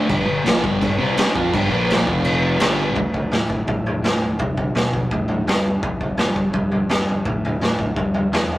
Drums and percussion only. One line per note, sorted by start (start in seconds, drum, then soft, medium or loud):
0.10 kick loud
0.10 crash medium
0.46 snare loud
0.46 crash soft
0.64 kick loud
0.82 kick medium
0.82 crash medium
1.17 snare loud
1.17 crash medium
1.36 kick loud
1.54 kick loud
1.54 crash medium
1.90 snare medium
1.90 crash medium
2.07 kick loud
2.25 crash medium
2.60 snare loud
2.60 crash medium
2.95 kick loud
2.95 floor tom medium
3.14 kick medium
3.14 floor tom medium
3.32 snare loud
3.32 floor tom medium
3.49 kick medium
3.49 floor tom medium
3.67 kick loud
3.67 floor tom medium
3.86 floor tom medium
4.04 snare loud
4.04 floor tom loud
4.22 floor tom medium
4.39 kick loud
4.39 floor tom medium
4.57 kick medium
4.57 floor tom medium
4.75 snare loud
4.75 floor tom medium
4.93 kick medium
4.93 floor tom medium
5.11 kick medium
5.11 floor tom medium
5.28 floor tom medium
5.47 snare loud
5.47 floor tom medium
5.65 floor tom medium
5.83 kick loud
5.83 floor tom medium
6.01 kick medium
6.01 floor tom medium
6.17 snare loud
6.17 floor tom medium
6.36 kick medium
6.36 floor tom medium
6.53 kick medium
6.53 floor tom medium
6.72 floor tom medium
6.89 snare loud
6.89 floor tom medium
7.08 floor tom medium
7.25 kick loud
7.25 floor tom medium
7.45 floor tom medium
7.61 snare medium
7.61 floor tom medium
7.79 kick medium
7.79 floor tom medium
7.96 kick loud
7.96 floor tom medium
8.14 floor tom medium
8.33 snare loud
8.33 floor tom loud
8.52 floor tom medium